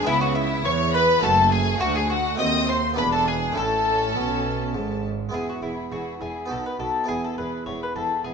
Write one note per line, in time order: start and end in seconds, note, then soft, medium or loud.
0.03 1.18 G#3 medium
0.03 1.18 B3 medium
0.03 1.19 E4 medium
0.03 0.21 E4 loud
0.03 0.22 E5 loud
0.07 0.64 C#2 loud
0.07 0.61 C#3 medium
0.07 0.64 C#3 loud
0.07 0.65 B3 medium
0.07 0.22 E4 loud
0.21 0.35 F#4 loud
0.21 0.37 F#4 loud
0.21 0.36 F#5 loud
0.35 0.63 E4 medium
0.35 0.65 E4 loud
0.35 0.65 E5 loud
0.64 1.22 E2 loud
0.64 1.19 E3 medium
0.64 1.22 E3 medium
0.64 1.23 B3 medium
0.64 0.92 C#5 medium
0.64 0.94 C#5 loud
0.64 0.72 C#6 loud
0.94 1.21 B4 loud
0.94 1.23 B4 loud
0.94 1.22 B5 loud
1.19 1.76 A3 medium
1.19 1.78 C#4 medium
1.19 1.79 F#4 medium
1.19 1.50 A4 loud
1.19 1.52 A5 loud
1.23 1.80 F#1 loud
1.23 1.78 F#2 medium
1.23 1.81 F#2 medium
1.23 1.81 A3 medium
1.23 1.53 A4 medium
1.51 1.79 G#4 medium
1.51 1.81 G#4 loud
1.51 1.80 G#5 loud
1.78 2.34 A3 medium
1.78 2.37 D4 medium
1.78 1.95 F#4 loud
1.78 2.37 F#4 medium
1.78 1.96 F#4 loud
1.78 1.95 F#5 loud
1.82 2.39 D2 loud
1.82 2.36 D2 medium
1.82 2.09 A3 medium
1.95 2.09 G#4 medium
1.95 2.10 G#4 loud
1.95 2.11 G#5 loud
2.10 2.18 A3 medium
2.10 2.37 F#4 medium
2.10 2.39 F#4 loud
2.10 2.39 F#5 loud
2.36 2.94 A3 medium
2.36 2.95 C4 medium
2.36 2.97 C4 medium
2.36 2.96 F#4 medium
2.36 2.66 D#5 loud
2.36 2.68 D#5 loud
2.36 2.68 D#6 loud
2.40 2.97 D#2 medium
2.40 2.94 D#2 medium
2.40 2.97 D#2 medium
2.68 2.96 C5 loud
2.68 2.77 C5 loud
2.68 2.98 C6 loud
2.94 3.53 B3 medium
2.94 3.54 D4 medium
2.94 3.54 E4 medium
2.94 3.03 B4 medium
2.98 3.57 E1 loud
2.98 3.53 E2 medium
2.98 3.57 E2 medium
2.98 3.55 D4 medium
2.98 3.12 B4 loud
2.98 3.12 B5 loud
3.12 3.27 A4 medium
3.12 3.26 A4 medium
3.12 3.28 A5 loud
3.27 3.56 G#4 medium
3.27 3.55 G#4 medium
3.27 3.35 G#5 loud
3.52 5.27 A3 medium
3.52 5.28 C#4 medium
3.52 5.29 E4 medium
3.52 5.03 A4 medium
3.56 4.14 A1 medium
3.56 4.11 A2 medium
3.56 4.14 A2 medium
3.56 5.13 C#4 medium
3.56 5.00 A4 loud
3.56 5.01 A5 loud
4.15 4.74 B1 medium
4.15 4.74 B2 medium
4.15 4.71 B2 medium
4.74 5.33 G#1 medium
4.74 5.33 G#2 medium
4.74 5.29 G#2 medium
5.29 6.44 G#3 soft
5.29 6.44 B3 soft
5.29 6.46 E4 soft
5.33 5.41 E1 soft
5.33 5.41 E2 soft
5.33 5.60 E2 soft
5.33 5.61 E4 soft
5.33 5.61 G#4 soft
5.33 5.47 G#4 medium
5.33 5.61 B5 soft
5.49 5.62 F#4 soft
5.62 5.71 E1 soft
5.62 5.89 E2 soft
5.62 5.71 E2 soft
5.62 5.91 E4 soft
5.62 5.90 E4 soft
5.62 5.90 G#4 soft
5.62 5.91 B5 soft
5.91 6.00 E1 soft
5.91 6.00 E2 soft
5.91 6.18 E2 soft
5.91 6.20 E4 soft
5.91 6.19 F#4 soft
5.91 6.20 G#4 soft
5.91 6.20 B5 soft
6.21 6.29 E1 soft
6.21 6.47 E2 soft
6.21 6.29 E2 soft
6.21 6.50 E4 soft
6.21 6.50 G#4 soft
6.21 6.48 G#4 medium
6.21 6.49 B5 soft
6.46 7.03 B3 soft
6.46 7.05 D#4 soft
6.46 7.06 F#4 soft
6.50 6.58 B1 soft
6.50 6.76 B2 soft
6.50 6.58 B2 soft
6.50 6.78 D#4 soft
6.50 6.78 F#4 soft
6.50 6.64 A4 medium
6.50 6.79 B5 soft
6.66 6.79 B4 medium
6.79 6.87 B1 soft
6.79 7.06 B2 soft
6.79 6.88 B2 soft
6.79 7.08 D#4 soft
6.79 7.08 F#4 soft
6.79 7.07 A4 medium
6.79 7.08 B5 soft
7.04 8.34 B3 soft
7.04 8.34 E4 soft
7.04 8.34 G#4 soft
7.08 7.17 E1 soft
7.08 7.35 E2 soft
7.08 7.17 E2 soft
7.08 7.37 E4 soft
7.08 7.36 G#4 soft
7.08 7.22 G#4 medium
7.08 7.37 B5 soft
7.24 7.37 A4 soft
7.37 7.46 E1 soft
7.37 7.46 E2 soft
7.37 7.64 E2 soft
7.37 7.66 E4 soft
7.37 7.65 G#4 soft
7.37 7.65 B4 soft
7.37 7.67 B5 soft
7.66 7.75 E1 soft
7.66 7.75 E2 soft
7.66 7.93 E2 soft
7.66 7.95 E4 soft
7.66 7.94 G#4 soft
7.66 7.80 C#5 medium
7.66 7.95 B5 soft
7.83 7.95 B4 medium
7.95 8.04 E1 soft
7.95 8.04 E2 soft
7.95 8.22 E2 soft
7.95 8.24 E4 soft
7.95 8.24 G#4 soft
7.95 8.23 A4 medium
7.95 8.25 B5 soft
8.24 8.33 E1 soft
8.24 8.34 E2 soft
8.24 8.33 E2 soft
8.24 8.34 E4 soft
8.24 8.34 G#4 medium
8.24 8.34 G#4 soft
8.24 8.34 B5 soft